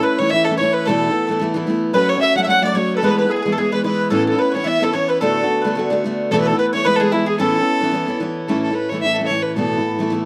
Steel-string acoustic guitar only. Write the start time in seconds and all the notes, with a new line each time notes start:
Already playing: E4
0.00 A3 C#4
0.19 E3 A3 C#4 E4
0.32 E3 A3 C#4 E4
0.49 E3 A3 C#4 E4
0.61 E3 A3 C#4 E4
0.87 E2 B2 E3 A3 B3 E4
1.09 E3 A3 B3 E4
1.28 E3 A3 B3 E4
1.40 E3 A3 B3
1.44 E4
1.54 E3 A3 B3 E4
1.67 E3 A3 B3 E4
1.93 F#3 A3 C#4 F#4
2.15 A3 C#4 F#4
2.35 F#3 A3 C#4 F#4
2.47 F#3 A3 C#4 F#4
2.62 F#3 A3 C#4 F#4
2.73 F#3 A3 C#4 F#4
3.02 E3 G#3 B3 E4
3.24 G#3 B3 E4
3.46 E3 G#3 B3 E4
3.57 E3 G#3 B3 E4
3.71 E3 G#3 B3 E4
3.84 E3 G#3 B3 E4
4.11 A2 E3 B3 C#4 E4
4.32 B3 C#4 E4
4.54 E3 B3 C#4 E4
4.65 E3 B3 C#4 E4
4.80 E3 B3 C#4 E4
4.92 E3 B3 C#4 E4
5.21 D2 A2 D3 A3 B3 F#4
5.43 D3 A3 B3 F#4
5.64 D3 A3 B3 F#4
5.75 D3 A3 B3 F#4
5.90 D3 A3 B3 F#4
6.04 D3 A3 B3 F#4
6.31 E2 B2 E3 A3 B3 E4
6.52 E3 A3 B3 E4
6.73 E3 A3 B3 E4
6.85 E3 G#3 B3 E4
7.00 E3 G#3 B3 E4
7.12 E3 G#3 B3 E4
7.38 A2 E3 B3 C#4 E4
7.58 B3 C#4 E4
7.81 E3 B3 C#4 E4
7.92 E3 B3 C#4 E4
8.07 E3 B3 C#4 E4
8.20 E3 B3 C#4 E4
8.48 A2 E3 A3 C#4 E4
8.70 A3 C#4 E4
8.91 E3 A3 C#4 E4
9.03 E3 A3 C#4 E4
9.18 E3 A3 C#4 E4
9.30 E3 A3 C#4 E4
9.56 E2 B2 E3 A3 B3 E4
9.78 E3 A3 B3 E4
9.99 E3 A3 B3 E4
10.10 E3 A3 B3
10.14 E4